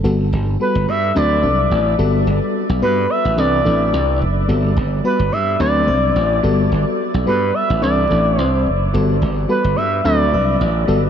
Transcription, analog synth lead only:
0.61 B4
0.89 E5
1.17 D5
2.82 B4
3.10 E5
3.38 D5
5.05 B4
5.32 E5
5.60 D5
7.27 B4
7.54 E5
7.82 D5
8.39 C5
9.49 B4
9.76 E5
10.04 D5

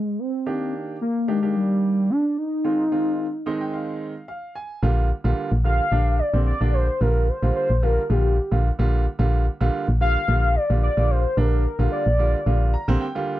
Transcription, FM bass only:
4.83 A#1
5.25 A#1
5.52 A#1
5.92 A#1
6.34 A#1
6.61 A#1
7.01 A#1
7.43 A#1
7.70 A#1
8.10 A#1
8.52 A#1
8.79 A#1
9.19 A#1
9.61 A#1
9.88 A#1
10.28 A#1
10.70 A#1
10.97 A#1
11.37 A#1
11.79 A#1
12.06 A#1
12.46 A#1
12.88 A#1

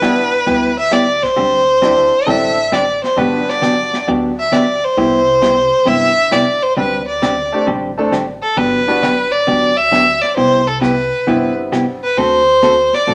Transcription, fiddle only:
Already playing: B4
0.79 E5
0.93 D5
1.23 C5
2.28 E5
2.73 D5
3.04 C5
3.19 B4
3.49 D5
4.40 E5
4.53 D5
4.84 C5
5.88 E5
6.32 D5
6.63 C5
6.77 B4
7.08 D5
8.43 A4
8.57 B4
9.32 D5
9.77 E5
10.22 D5
10.36 C5
10.67 A4
10.82 B4
12.04 B4
12.18 C5
12.94 D5

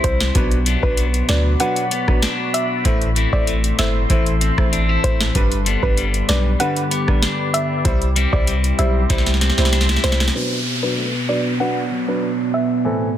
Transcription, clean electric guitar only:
Already playing: G3 C4 E4
0.35 B2
0.66 F#3 B3 D4
0.98 F#3
1.60 F#3
1.92 B3
2.23 D4
2.85 A2
3.16 A3 C4 E4
3.48 A3
4.10 E3
4.41 C4
4.72 D4
4.89 E4
5.35 G2
5.66 G3 B3 D4
5.98 G3
6.60 D3
6.91 B3
7.23 D4
8.16 G3 C4 E4
8.47 G3
9.10 G3
9.41 C4
9.73 D4
9.89 E4
10.35 B2
10.98 A3
11.14 B3
11.60 F#3 B3 D4
11.91 F#3
12.23 D4
12.54 B3
12.85 A2

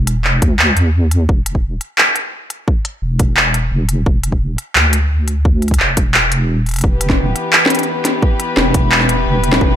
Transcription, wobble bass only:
Already playing: E1
0.42 D2
0.77 E2
1.29 E1
3.02 E1
3.71 E1
4.06 E1
4.75 D2
5.80 E1
6.84 E1
8.57 E1
9.26 E1
9.61 E1

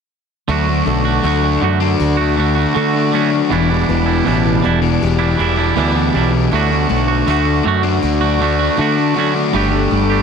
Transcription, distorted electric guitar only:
0.48 D3 A3 D4
0.67 A3 D4
0.86 D3 A3 D4
1.23 D3 A3 D4
1.43 A3 D4
1.63 muted distorted electric guitar stroke
1.80 A3 D4
2.38 D3 A3 D4
2.74 D3 A3 D4
2.93 A3 D4
3.12 D3 A3 D4
3.31 A3 D4
3.51 E2 B2 E3
3.70 B2 E3
3.89 E2 B2 E3
4.26 E2 B2 E3
4.45 B2 E3
4.64 muted distorted electric guitar stroke
4.82 B2 E3
5.38 E2 B2 E3
5.76 E2 B2 E3
5.95 B2 E3
6.14 E2 B2 E3
6.32 B2 E3
6.51 D3 A3 D4
6.71 A3 D4
6.88 D3 A3 D4
7.27 D3 A3 D4
7.45 A3 D4
7.64 muted distorted electric guitar stroke
7.83 A3 D4
8.39 D3 A3 D4
8.77 D3 A3 D4
8.96 A3 D4
9.14 D3 A3 D4
9.34 A3 D4
9.52 G2 D3 G3
9.70 D3 G3
9.88 G2 D3 G3

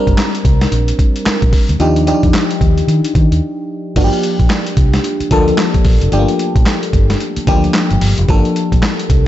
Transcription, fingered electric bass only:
0.07 G1
0.45 C2
0.72 A#1
1.26 muted fingered electric bass stroke
1.43 A#1
1.69 D2
1.80 D#2
2.23 F2
2.61 D#2
2.87 D#3
3.15 D#3
3.31 D#2
3.96 G1
4.39 A#1
4.77 C2
5.20 muted fingered electric bass stroke
5.31 D2
5.85 A#1
6.01 F1
6.12 G1
6.56 A#1
6.93 G1
7.37 muted fingered electric bass stroke
7.48 D2
7.91 G1
8.01 G1
8.18 F1
8.72 A#1
9.10 C2

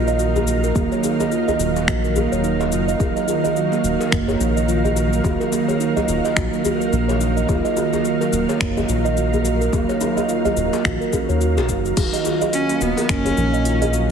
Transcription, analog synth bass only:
Already playing: A#1
0.76 D#1
1.59 D#1
1.88 A#1
2.32 D#1
2.72 F#1
3.00 D#1
3.84 D#1
4.12 F#1
4.40 A#1
5.24 D#1
6.08 D#1
6.37 A#1
6.93 A#1
7.49 D#1
8.33 D#1
8.61 F#1
8.89 A#1
9.73 D#1
10.57 D#1
10.85 A#1
11.29 D#2
11.57 A#1
11.69 F#1
11.97 D#1
12.81 D#1
13.09 F#1
13.37 A#1

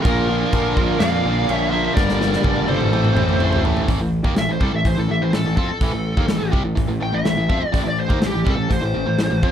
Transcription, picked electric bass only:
0.05 A#1
0.53 A#1
0.77 A#1
1.01 F2
1.25 A#1
1.49 A#1
1.97 G1
2.44 G1
2.67 G1
2.91 A1
3.15 A1
3.40 A1
3.89 A1
3.99 A1
4.24 D#2
4.35 A1
4.47 A1
4.60 C2
4.73 A1
4.85 A1
4.98 A1
5.10 A1
5.22 A1
5.34 A1
5.46 A1
5.57 F2
5.69 muted picked electric bass stroke
5.80 A1
5.94 A1
6.17 D#2
6.30 A1
6.42 A1
6.53 C2
6.65 A1
6.78 A1
6.89 A1
7.02 A1
7.14 A1
7.25 A1
7.37 A1
7.50 F2
7.63 muted picked electric bass stroke
7.74 A1
7.85 A1
8.10 D#2
8.23 A1
8.35 A1
8.47 C2
8.59 A1
8.70 A1
8.83 A1
8.95 A1
9.07 A1
9.19 A1
9.31 A1
9.43 F2

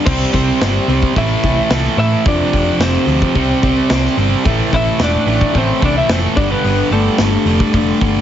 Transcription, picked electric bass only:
0.06 C2
0.34 C2
0.61 G1
0.88 C2
1.16 A1
1.43 C2
1.70 C2
1.97 A2
2.25 F1
2.53 F1
2.79 F1
3.07 D2
3.36 C2
3.63 C2
3.90 C2
4.17 G1
4.45 A1
4.73 A1
4.99 E1
5.26 A1
5.55 A1
5.82 C2
6.09 F1
6.37 G1
6.64 G1
6.91 G1
7.19 G1
7.45 F1
7.74 F1
8.01 G1

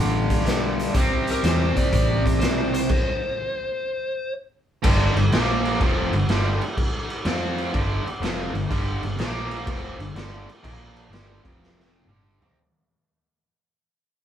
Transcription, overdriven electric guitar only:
Already playing: G2 D3 G3
0.94 C3 G3 C4
4.83 G2 D3 G3
5.17 G2 D3
5.33 A#2 F3 A#3
5.82 F2 C3 F3
6.14 G2 D3
6.30 G2 D3 G3
7.25 F3 C4 F4
7.73 G2 D3 G3
8.06 muted overdriven electric guitar stroke
8.21 F2 C3 F3
8.54 G2 D3
8.70 G2 D3 G3
9.03 G2 D3
9.19 A#2 F3 A#3
9.68 F2 C3 F3
10.00 G2 D3
10.15 G2 D3 G3
10.63 A#2 F3 A#3
11.11 G2 D3 G3
11.43 F2 C3 F3
12.09 G2 D3 G3
12.41 C3 G3 C4

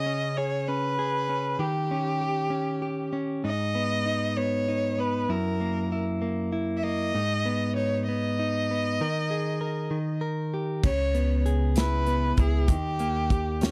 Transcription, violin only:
Already playing: D#5
0.37 C#5
0.68 B4
1.59 G4
3.46 D#5
4.37 C#5
5.00 B4
5.32 A#4
6.77 E5
6.83 D#5
7.76 C#5
8.07 D#5
10.85 C#5
11.78 B4
12.39 G#4
12.68 G4

